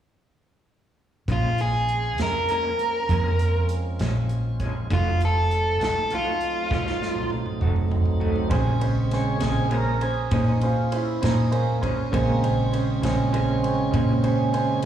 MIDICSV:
0, 0, Header, 1, 7, 480
1, 0, Start_track
1, 0, Key_signature, -5, "minor"
1, 0, Tempo, 602410
1, 1024, Time_signature, 12, 3, 24, 8
1, 11835, End_track
2, 0, Start_track
2, 0, Title_t, "Lead electric guitar"
2, 0, Program_c, 0, 29
2, 1047, Note_on_c, 0, 65, 56
2, 1269, Note_off_c, 0, 65, 0
2, 1283, Note_on_c, 0, 68, 59
2, 1739, Note_off_c, 0, 68, 0
2, 1770, Note_on_c, 0, 70, 62
2, 1991, Note_off_c, 0, 70, 0
2, 2001, Note_on_c, 0, 70, 64
2, 2925, Note_off_c, 0, 70, 0
2, 3930, Note_on_c, 0, 65, 65
2, 4151, Note_off_c, 0, 65, 0
2, 4183, Note_on_c, 0, 69, 67
2, 4631, Note_off_c, 0, 69, 0
2, 4660, Note_on_c, 0, 69, 64
2, 4877, Note_off_c, 0, 69, 0
2, 4898, Note_on_c, 0, 65, 67
2, 5814, Note_off_c, 0, 65, 0
2, 11835, End_track
3, 0, Start_track
3, 0, Title_t, "Grand piano"
3, 0, Program_c, 1, 0
3, 6767, Note_on_c, 1, 61, 70
3, 6774, Note_on_c, 1, 68, 62
3, 6779, Note_on_c, 1, 72, 77
3, 6957, Note_off_c, 1, 61, 0
3, 6960, Note_off_c, 1, 68, 0
3, 6963, Note_off_c, 1, 72, 0
3, 7010, Note_on_c, 1, 61, 64
3, 7021, Note_on_c, 1, 68, 53
3, 7023, Note_on_c, 1, 72, 67
3, 7198, Note_off_c, 1, 61, 0
3, 7203, Note_off_c, 1, 68, 0
3, 7205, Note_off_c, 1, 72, 0
3, 7263, Note_on_c, 1, 61, 51
3, 7269, Note_on_c, 1, 68, 46
3, 7277, Note_on_c, 1, 72, 57
3, 7444, Note_off_c, 1, 61, 0
3, 7448, Note_off_c, 1, 68, 0
3, 7451, Note_off_c, 1, 72, 0
3, 7495, Note_on_c, 1, 61, 46
3, 7499, Note_on_c, 1, 68, 38
3, 7504, Note_on_c, 1, 72, 51
3, 7681, Note_off_c, 1, 61, 0
3, 7682, Note_off_c, 1, 68, 0
3, 7685, Note_off_c, 1, 72, 0
3, 7735, Note_on_c, 1, 61, 53
3, 7739, Note_on_c, 1, 68, 48
3, 7747, Note_on_c, 1, 72, 57
3, 7920, Note_off_c, 1, 61, 0
3, 7923, Note_off_c, 1, 68, 0
3, 7927, Note_off_c, 1, 72, 0
3, 7975, Note_on_c, 1, 61, 52
3, 7984, Note_on_c, 1, 68, 43
3, 7985, Note_on_c, 1, 72, 55
3, 8160, Note_off_c, 1, 61, 0
3, 8165, Note_off_c, 1, 68, 0
3, 8165, Note_off_c, 1, 72, 0
3, 8214, Note_on_c, 1, 61, 49
3, 8221, Note_on_c, 1, 68, 43
3, 8226, Note_on_c, 1, 72, 56
3, 8400, Note_off_c, 1, 61, 0
3, 8403, Note_off_c, 1, 68, 0
3, 8406, Note_off_c, 1, 72, 0
3, 8457, Note_on_c, 1, 61, 53
3, 8464, Note_on_c, 1, 68, 46
3, 8470, Note_on_c, 1, 72, 61
3, 8641, Note_off_c, 1, 61, 0
3, 8645, Note_off_c, 1, 68, 0
3, 8648, Note_off_c, 1, 72, 0
3, 8693, Note_on_c, 1, 61, 55
3, 8700, Note_on_c, 1, 68, 47
3, 8704, Note_on_c, 1, 72, 57
3, 8879, Note_off_c, 1, 61, 0
3, 8883, Note_off_c, 1, 68, 0
3, 8885, Note_off_c, 1, 72, 0
3, 8922, Note_on_c, 1, 61, 43
3, 8931, Note_on_c, 1, 68, 45
3, 8940, Note_on_c, 1, 72, 53
3, 9114, Note_off_c, 1, 61, 0
3, 9118, Note_off_c, 1, 68, 0
3, 9123, Note_off_c, 1, 72, 0
3, 9165, Note_on_c, 1, 61, 53
3, 9174, Note_on_c, 1, 68, 45
3, 9175, Note_on_c, 1, 72, 60
3, 9355, Note_off_c, 1, 61, 0
3, 9360, Note_off_c, 1, 68, 0
3, 9360, Note_off_c, 1, 72, 0
3, 9410, Note_on_c, 1, 61, 49
3, 9412, Note_on_c, 1, 68, 46
3, 9418, Note_on_c, 1, 72, 57
3, 9598, Note_off_c, 1, 61, 0
3, 9599, Note_off_c, 1, 68, 0
3, 9601, Note_off_c, 1, 72, 0
3, 9657, Note_on_c, 1, 61, 58
3, 9667, Note_on_c, 1, 68, 53
3, 9669, Note_on_c, 1, 72, 65
3, 9841, Note_off_c, 1, 61, 0
3, 9846, Note_off_c, 1, 68, 0
3, 9847, Note_off_c, 1, 72, 0
3, 9897, Note_on_c, 1, 61, 48
3, 9901, Note_on_c, 1, 68, 50
3, 9912, Note_on_c, 1, 72, 54
3, 10081, Note_off_c, 1, 61, 0
3, 10083, Note_off_c, 1, 68, 0
3, 10089, Note_off_c, 1, 72, 0
3, 10138, Note_on_c, 1, 61, 57
3, 10147, Note_on_c, 1, 68, 47
3, 10152, Note_on_c, 1, 72, 56
3, 10321, Note_off_c, 1, 61, 0
3, 10326, Note_off_c, 1, 68, 0
3, 10329, Note_off_c, 1, 72, 0
3, 10370, Note_on_c, 1, 61, 43
3, 10374, Note_on_c, 1, 68, 47
3, 10382, Note_on_c, 1, 72, 50
3, 10557, Note_off_c, 1, 61, 0
3, 10559, Note_off_c, 1, 68, 0
3, 10564, Note_off_c, 1, 72, 0
3, 10615, Note_on_c, 1, 61, 56
3, 10622, Note_on_c, 1, 68, 49
3, 10627, Note_on_c, 1, 72, 57
3, 10800, Note_off_c, 1, 61, 0
3, 10804, Note_off_c, 1, 68, 0
3, 10806, Note_off_c, 1, 72, 0
3, 10854, Note_on_c, 1, 61, 51
3, 10861, Note_on_c, 1, 68, 43
3, 10864, Note_on_c, 1, 72, 50
3, 11040, Note_off_c, 1, 61, 0
3, 11043, Note_off_c, 1, 68, 0
3, 11045, Note_off_c, 1, 72, 0
3, 11085, Note_on_c, 1, 61, 66
3, 11093, Note_on_c, 1, 68, 56
3, 11102, Note_on_c, 1, 72, 64
3, 11275, Note_off_c, 1, 61, 0
3, 11279, Note_off_c, 1, 68, 0
3, 11284, Note_off_c, 1, 72, 0
3, 11336, Note_on_c, 1, 61, 63
3, 11343, Note_on_c, 1, 68, 57
3, 11345, Note_on_c, 1, 72, 69
3, 11521, Note_off_c, 1, 61, 0
3, 11525, Note_off_c, 1, 68, 0
3, 11525, Note_off_c, 1, 72, 0
3, 11574, Note_on_c, 1, 61, 63
3, 11584, Note_on_c, 1, 72, 71
3, 11585, Note_on_c, 1, 68, 60
3, 11760, Note_off_c, 1, 61, 0
3, 11765, Note_off_c, 1, 72, 0
3, 11766, Note_off_c, 1, 68, 0
3, 11835, End_track
4, 0, Start_track
4, 0, Title_t, "Tonewheel organ"
4, 0, Program_c, 2, 16
4, 1028, Note_on_c, 2, 61, 46
4, 1034, Note_on_c, 2, 65, 46
4, 1035, Note_on_c, 2, 60, 47
4, 1037, Note_on_c, 2, 56, 42
4, 3879, Note_off_c, 2, 61, 0
4, 3882, Note_off_c, 2, 60, 0
4, 3882, Note_off_c, 2, 65, 0
4, 3884, Note_off_c, 2, 56, 0
4, 3906, Note_on_c, 2, 63, 55
4, 3913, Note_on_c, 2, 60, 51
4, 3915, Note_on_c, 2, 57, 49
4, 3916, Note_on_c, 2, 54, 49
4, 6758, Note_off_c, 2, 63, 0
4, 6761, Note_off_c, 2, 60, 0
4, 6762, Note_off_c, 2, 57, 0
4, 6763, Note_off_c, 2, 54, 0
4, 6792, Note_on_c, 2, 56, 46
4, 6792, Note_on_c, 2, 60, 51
4, 6793, Note_on_c, 2, 49, 47
4, 7277, Note_on_c, 2, 73, 85
4, 7476, Note_off_c, 2, 49, 0
4, 7477, Note_off_c, 2, 56, 0
4, 7477, Note_off_c, 2, 60, 0
4, 7486, Note_on_c, 2, 49, 41
4, 7490, Note_on_c, 2, 56, 36
4, 7492, Note_on_c, 2, 60, 43
4, 7504, Note_off_c, 2, 73, 0
4, 7506, Note_on_c, 2, 68, 76
4, 7711, Note_off_c, 2, 49, 0
4, 7713, Note_off_c, 2, 56, 0
4, 7714, Note_off_c, 2, 60, 0
4, 7739, Note_off_c, 2, 68, 0
4, 7763, Note_on_c, 2, 70, 68
4, 7987, Note_on_c, 2, 68, 85
4, 7988, Note_off_c, 2, 70, 0
4, 8219, Note_off_c, 2, 68, 0
4, 8236, Note_on_c, 2, 63, 63
4, 8464, Note_off_c, 2, 63, 0
4, 8491, Note_on_c, 2, 65, 70
4, 8712, Note_off_c, 2, 65, 0
4, 8734, Note_on_c, 2, 64, 76
4, 8953, Note_off_c, 2, 64, 0
4, 8954, Note_on_c, 2, 63, 78
4, 9183, Note_off_c, 2, 63, 0
4, 9184, Note_on_c, 2, 58, 77
4, 9417, Note_off_c, 2, 58, 0
4, 9432, Note_on_c, 2, 61, 78
4, 9650, Note_on_c, 2, 49, 50
4, 9657, Note_on_c, 2, 56, 49
4, 9661, Note_on_c, 2, 60, 52
4, 9662, Note_off_c, 2, 61, 0
4, 9668, Note_on_c, 2, 58, 78
4, 9899, Note_off_c, 2, 58, 0
4, 10156, Note_off_c, 2, 56, 0
4, 10165, Note_on_c, 2, 56, 85
4, 10382, Note_off_c, 2, 56, 0
4, 10392, Note_on_c, 2, 56, 75
4, 10394, Note_on_c, 2, 61, 87
4, 11797, Note_off_c, 2, 56, 0
4, 11799, Note_off_c, 2, 61, 0
4, 11835, Note_off_c, 2, 49, 0
4, 11835, Note_off_c, 2, 60, 0
4, 11835, End_track
5, 0, Start_track
5, 0, Title_t, "Clean electric guitar"
5, 0, Program_c, 3, 27
5, 1025, Note_on_c, 3, 46, 56
5, 1033, Note_on_c, 3, 53, 53
5, 1035, Note_on_c, 3, 56, 62
5, 1037, Note_on_c, 3, 61, 59
5, 1169, Note_off_c, 3, 46, 0
5, 1173, Note_off_c, 3, 53, 0
5, 1174, Note_off_c, 3, 56, 0
5, 1174, Note_off_c, 3, 61, 0
5, 1747, Note_on_c, 3, 61, 29
5, 1754, Note_on_c, 3, 56, 34
5, 1761, Note_on_c, 3, 53, 24
5, 1889, Note_off_c, 3, 61, 0
5, 1893, Note_off_c, 3, 56, 0
5, 1897, Note_off_c, 3, 53, 0
5, 1991, Note_on_c, 3, 46, 41
5, 1998, Note_on_c, 3, 53, 46
5, 2002, Note_on_c, 3, 56, 46
5, 2010, Note_on_c, 3, 61, 49
5, 2132, Note_off_c, 3, 46, 0
5, 2136, Note_off_c, 3, 53, 0
5, 2137, Note_off_c, 3, 56, 0
5, 2141, Note_off_c, 3, 61, 0
5, 2477, Note_on_c, 3, 53, 60
5, 2478, Note_on_c, 3, 46, 63
5, 2484, Note_on_c, 3, 56, 65
5, 2486, Note_on_c, 3, 61, 60
5, 2615, Note_off_c, 3, 46, 0
5, 2615, Note_off_c, 3, 53, 0
5, 2618, Note_off_c, 3, 56, 0
5, 2619, Note_off_c, 3, 61, 0
5, 3190, Note_on_c, 3, 61, 51
5, 3196, Note_on_c, 3, 56, 44
5, 3204, Note_on_c, 3, 53, 43
5, 3332, Note_off_c, 3, 61, 0
5, 3335, Note_off_c, 3, 56, 0
5, 3339, Note_off_c, 3, 53, 0
5, 3672, Note_on_c, 3, 61, 48
5, 3682, Note_on_c, 3, 56, 44
5, 3691, Note_on_c, 3, 53, 39
5, 3813, Note_off_c, 3, 61, 0
5, 3818, Note_off_c, 3, 56, 0
5, 3822, Note_off_c, 3, 53, 0
5, 3908, Note_on_c, 3, 53, 59
5, 3911, Note_on_c, 3, 57, 63
5, 3916, Note_on_c, 3, 63, 64
5, 3919, Note_on_c, 3, 66, 67
5, 4051, Note_off_c, 3, 53, 0
5, 4053, Note_off_c, 3, 57, 0
5, 4055, Note_off_c, 3, 63, 0
5, 4056, Note_off_c, 3, 66, 0
5, 4623, Note_on_c, 3, 66, 32
5, 4630, Note_on_c, 3, 63, 32
5, 4641, Note_on_c, 3, 57, 29
5, 4769, Note_off_c, 3, 66, 0
5, 4772, Note_off_c, 3, 63, 0
5, 4778, Note_off_c, 3, 57, 0
5, 4872, Note_on_c, 3, 53, 47
5, 4878, Note_on_c, 3, 57, 50
5, 4884, Note_on_c, 3, 63, 45
5, 4888, Note_on_c, 3, 66, 54
5, 5013, Note_off_c, 3, 53, 0
5, 5016, Note_off_c, 3, 57, 0
5, 5019, Note_off_c, 3, 63, 0
5, 5021, Note_off_c, 3, 66, 0
5, 5346, Note_on_c, 3, 57, 55
5, 5347, Note_on_c, 3, 53, 61
5, 5350, Note_on_c, 3, 63, 55
5, 5355, Note_on_c, 3, 66, 70
5, 5490, Note_off_c, 3, 57, 0
5, 5491, Note_off_c, 3, 53, 0
5, 5492, Note_off_c, 3, 63, 0
5, 5495, Note_off_c, 3, 66, 0
5, 6072, Note_on_c, 3, 66, 47
5, 6079, Note_on_c, 3, 63, 42
5, 6084, Note_on_c, 3, 57, 34
5, 6213, Note_off_c, 3, 66, 0
5, 6216, Note_off_c, 3, 63, 0
5, 6219, Note_off_c, 3, 57, 0
5, 6536, Note_on_c, 3, 66, 46
5, 6542, Note_on_c, 3, 63, 40
5, 6546, Note_on_c, 3, 57, 36
5, 6685, Note_off_c, 3, 66, 0
5, 6688, Note_off_c, 3, 63, 0
5, 6690, Note_off_c, 3, 57, 0
5, 6780, Note_on_c, 3, 46, 76
5, 6786, Note_on_c, 3, 53, 72
5, 6787, Note_on_c, 3, 56, 81
5, 6788, Note_on_c, 3, 61, 80
5, 6927, Note_off_c, 3, 46, 0
5, 6930, Note_off_c, 3, 53, 0
5, 6930, Note_off_c, 3, 56, 0
5, 6931, Note_off_c, 3, 61, 0
5, 7493, Note_on_c, 3, 61, 39
5, 7505, Note_on_c, 3, 56, 39
5, 7513, Note_on_c, 3, 53, 32
5, 7644, Note_off_c, 3, 61, 0
5, 7650, Note_off_c, 3, 56, 0
5, 7653, Note_off_c, 3, 53, 0
5, 7729, Note_on_c, 3, 46, 53
5, 7738, Note_on_c, 3, 53, 53
5, 7744, Note_on_c, 3, 56, 53
5, 7747, Note_on_c, 3, 61, 60
5, 7881, Note_off_c, 3, 46, 0
5, 7886, Note_off_c, 3, 53, 0
5, 7889, Note_off_c, 3, 56, 0
5, 7890, Note_off_c, 3, 61, 0
5, 8217, Note_on_c, 3, 46, 62
5, 8224, Note_on_c, 3, 53, 70
5, 8225, Note_on_c, 3, 56, 77
5, 8227, Note_on_c, 3, 61, 82
5, 8365, Note_off_c, 3, 46, 0
5, 8369, Note_off_c, 3, 53, 0
5, 8369, Note_off_c, 3, 56, 0
5, 8370, Note_off_c, 3, 61, 0
5, 8942, Note_on_c, 3, 61, 53
5, 8951, Note_on_c, 3, 56, 39
5, 8958, Note_on_c, 3, 53, 45
5, 9088, Note_off_c, 3, 61, 0
5, 9092, Note_off_c, 3, 56, 0
5, 9096, Note_off_c, 3, 53, 0
5, 9419, Note_on_c, 3, 61, 47
5, 9430, Note_on_c, 3, 56, 45
5, 9434, Note_on_c, 3, 53, 40
5, 9566, Note_off_c, 3, 61, 0
5, 9572, Note_off_c, 3, 56, 0
5, 9573, Note_off_c, 3, 53, 0
5, 9662, Note_on_c, 3, 46, 69
5, 9665, Note_on_c, 3, 53, 71
5, 9669, Note_on_c, 3, 56, 77
5, 9674, Note_on_c, 3, 61, 69
5, 9808, Note_off_c, 3, 46, 0
5, 9809, Note_off_c, 3, 53, 0
5, 9811, Note_off_c, 3, 56, 0
5, 9813, Note_off_c, 3, 61, 0
5, 10376, Note_on_c, 3, 61, 41
5, 10388, Note_on_c, 3, 56, 37
5, 10394, Note_on_c, 3, 53, 35
5, 10525, Note_off_c, 3, 61, 0
5, 10531, Note_off_c, 3, 56, 0
5, 10533, Note_off_c, 3, 53, 0
5, 10622, Note_on_c, 3, 46, 55
5, 10625, Note_on_c, 3, 53, 54
5, 10634, Note_on_c, 3, 56, 59
5, 10638, Note_on_c, 3, 61, 61
5, 10768, Note_off_c, 3, 46, 0
5, 10769, Note_off_c, 3, 53, 0
5, 10774, Note_off_c, 3, 56, 0
5, 10776, Note_off_c, 3, 61, 0
5, 11107, Note_on_c, 3, 46, 78
5, 11107, Note_on_c, 3, 53, 91
5, 11111, Note_on_c, 3, 56, 79
5, 11116, Note_on_c, 3, 61, 84
5, 11250, Note_off_c, 3, 46, 0
5, 11250, Note_off_c, 3, 53, 0
5, 11252, Note_off_c, 3, 56, 0
5, 11255, Note_off_c, 3, 61, 0
5, 11835, End_track
6, 0, Start_track
6, 0, Title_t, "Fingered electric bass"
6, 0, Program_c, 4, 33
6, 1020, Note_on_c, 4, 34, 66
6, 1742, Note_off_c, 4, 34, 0
6, 1742, Note_on_c, 4, 41, 73
6, 1964, Note_off_c, 4, 41, 0
6, 2463, Note_on_c, 4, 41, 71
6, 3153, Note_off_c, 4, 41, 0
6, 3189, Note_on_c, 4, 34, 60
6, 3876, Note_off_c, 4, 34, 0
6, 3905, Note_on_c, 4, 29, 75
6, 4637, Note_off_c, 4, 29, 0
6, 4637, Note_on_c, 4, 36, 79
6, 4853, Note_off_c, 4, 36, 0
6, 5347, Note_on_c, 4, 36, 86
6, 6035, Note_off_c, 4, 36, 0
6, 6065, Note_on_c, 4, 29, 61
6, 6754, Note_off_c, 4, 29, 0
6, 6780, Note_on_c, 4, 34, 88
6, 7471, Note_off_c, 4, 34, 0
6, 7510, Note_on_c, 4, 34, 78
6, 8196, Note_off_c, 4, 34, 0
6, 8222, Note_on_c, 4, 46, 83
6, 8911, Note_off_c, 4, 46, 0
6, 8948, Note_on_c, 4, 46, 73
6, 9635, Note_off_c, 4, 46, 0
6, 9665, Note_on_c, 4, 34, 91
6, 10353, Note_off_c, 4, 34, 0
6, 10385, Note_on_c, 4, 34, 82
6, 11073, Note_off_c, 4, 34, 0
6, 11106, Note_on_c, 4, 46, 96
6, 11794, Note_off_c, 4, 46, 0
6, 11835, End_track
7, 0, Start_track
7, 0, Title_t, "Drums"
7, 1020, Note_on_c, 9, 36, 85
7, 1021, Note_on_c, 9, 42, 60
7, 1100, Note_off_c, 9, 36, 0
7, 1100, Note_off_c, 9, 42, 0
7, 1260, Note_on_c, 9, 42, 43
7, 1340, Note_off_c, 9, 42, 0
7, 1502, Note_on_c, 9, 42, 48
7, 1582, Note_off_c, 9, 42, 0
7, 1738, Note_on_c, 9, 42, 66
7, 1750, Note_on_c, 9, 38, 83
7, 1818, Note_off_c, 9, 42, 0
7, 1830, Note_off_c, 9, 38, 0
7, 1981, Note_on_c, 9, 42, 50
7, 2061, Note_off_c, 9, 42, 0
7, 2223, Note_on_c, 9, 42, 43
7, 2303, Note_off_c, 9, 42, 0
7, 2463, Note_on_c, 9, 36, 72
7, 2464, Note_on_c, 9, 42, 67
7, 2543, Note_off_c, 9, 36, 0
7, 2544, Note_off_c, 9, 42, 0
7, 2703, Note_on_c, 9, 42, 51
7, 2783, Note_off_c, 9, 42, 0
7, 2939, Note_on_c, 9, 42, 53
7, 3019, Note_off_c, 9, 42, 0
7, 3182, Note_on_c, 9, 42, 61
7, 3194, Note_on_c, 9, 38, 85
7, 3262, Note_off_c, 9, 42, 0
7, 3274, Note_off_c, 9, 38, 0
7, 3421, Note_on_c, 9, 42, 44
7, 3501, Note_off_c, 9, 42, 0
7, 3663, Note_on_c, 9, 42, 46
7, 3665, Note_on_c, 9, 36, 63
7, 3743, Note_off_c, 9, 42, 0
7, 3745, Note_off_c, 9, 36, 0
7, 3908, Note_on_c, 9, 36, 86
7, 3908, Note_on_c, 9, 42, 64
7, 3988, Note_off_c, 9, 36, 0
7, 3988, Note_off_c, 9, 42, 0
7, 4148, Note_on_c, 9, 42, 47
7, 4228, Note_off_c, 9, 42, 0
7, 4390, Note_on_c, 9, 42, 40
7, 4470, Note_off_c, 9, 42, 0
7, 4631, Note_on_c, 9, 42, 54
7, 4643, Note_on_c, 9, 38, 79
7, 4711, Note_off_c, 9, 42, 0
7, 4723, Note_off_c, 9, 38, 0
7, 4865, Note_on_c, 9, 42, 46
7, 4944, Note_off_c, 9, 42, 0
7, 5105, Note_on_c, 9, 42, 41
7, 5185, Note_off_c, 9, 42, 0
7, 5345, Note_on_c, 9, 36, 84
7, 5353, Note_on_c, 9, 38, 39
7, 5425, Note_off_c, 9, 36, 0
7, 5433, Note_off_c, 9, 38, 0
7, 5474, Note_on_c, 9, 38, 41
7, 5553, Note_off_c, 9, 38, 0
7, 5595, Note_on_c, 9, 38, 52
7, 5675, Note_off_c, 9, 38, 0
7, 5701, Note_on_c, 9, 48, 35
7, 5780, Note_off_c, 9, 48, 0
7, 5818, Note_on_c, 9, 48, 57
7, 5898, Note_off_c, 9, 48, 0
7, 5943, Note_on_c, 9, 47, 40
7, 6023, Note_off_c, 9, 47, 0
7, 6064, Note_on_c, 9, 47, 64
7, 6144, Note_off_c, 9, 47, 0
7, 6183, Note_on_c, 9, 45, 46
7, 6263, Note_off_c, 9, 45, 0
7, 6306, Note_on_c, 9, 45, 61
7, 6386, Note_off_c, 9, 45, 0
7, 6418, Note_on_c, 9, 43, 53
7, 6498, Note_off_c, 9, 43, 0
7, 6544, Note_on_c, 9, 43, 67
7, 6623, Note_off_c, 9, 43, 0
7, 6659, Note_on_c, 9, 43, 58
7, 6738, Note_off_c, 9, 43, 0
7, 6778, Note_on_c, 9, 51, 76
7, 6780, Note_on_c, 9, 36, 103
7, 6858, Note_off_c, 9, 51, 0
7, 6860, Note_off_c, 9, 36, 0
7, 7021, Note_on_c, 9, 51, 60
7, 7101, Note_off_c, 9, 51, 0
7, 7261, Note_on_c, 9, 51, 53
7, 7273, Note_on_c, 9, 38, 29
7, 7341, Note_off_c, 9, 51, 0
7, 7352, Note_off_c, 9, 38, 0
7, 7493, Note_on_c, 9, 51, 67
7, 7505, Note_on_c, 9, 38, 91
7, 7573, Note_off_c, 9, 51, 0
7, 7585, Note_off_c, 9, 38, 0
7, 7735, Note_on_c, 9, 51, 50
7, 7815, Note_off_c, 9, 51, 0
7, 7977, Note_on_c, 9, 51, 51
7, 8057, Note_off_c, 9, 51, 0
7, 8217, Note_on_c, 9, 51, 74
7, 8221, Note_on_c, 9, 36, 97
7, 8297, Note_off_c, 9, 51, 0
7, 8300, Note_off_c, 9, 36, 0
7, 8457, Note_on_c, 9, 51, 51
7, 8537, Note_off_c, 9, 51, 0
7, 8701, Note_on_c, 9, 51, 65
7, 8781, Note_off_c, 9, 51, 0
7, 8945, Note_on_c, 9, 51, 80
7, 8957, Note_on_c, 9, 38, 92
7, 9024, Note_off_c, 9, 51, 0
7, 9036, Note_off_c, 9, 38, 0
7, 9181, Note_on_c, 9, 51, 52
7, 9261, Note_off_c, 9, 51, 0
7, 9425, Note_on_c, 9, 36, 73
7, 9427, Note_on_c, 9, 51, 55
7, 9504, Note_off_c, 9, 36, 0
7, 9506, Note_off_c, 9, 51, 0
7, 9665, Note_on_c, 9, 36, 98
7, 9671, Note_on_c, 9, 51, 83
7, 9745, Note_off_c, 9, 36, 0
7, 9751, Note_off_c, 9, 51, 0
7, 9910, Note_on_c, 9, 51, 60
7, 9990, Note_off_c, 9, 51, 0
7, 10147, Note_on_c, 9, 51, 60
7, 10227, Note_off_c, 9, 51, 0
7, 10385, Note_on_c, 9, 51, 77
7, 10397, Note_on_c, 9, 38, 92
7, 10465, Note_off_c, 9, 51, 0
7, 10477, Note_off_c, 9, 38, 0
7, 10627, Note_on_c, 9, 51, 57
7, 10707, Note_off_c, 9, 51, 0
7, 10869, Note_on_c, 9, 51, 53
7, 10948, Note_off_c, 9, 51, 0
7, 11104, Note_on_c, 9, 36, 94
7, 11105, Note_on_c, 9, 51, 72
7, 11184, Note_off_c, 9, 36, 0
7, 11185, Note_off_c, 9, 51, 0
7, 11344, Note_on_c, 9, 51, 56
7, 11424, Note_off_c, 9, 51, 0
7, 11583, Note_on_c, 9, 51, 56
7, 11663, Note_off_c, 9, 51, 0
7, 11835, End_track
0, 0, End_of_file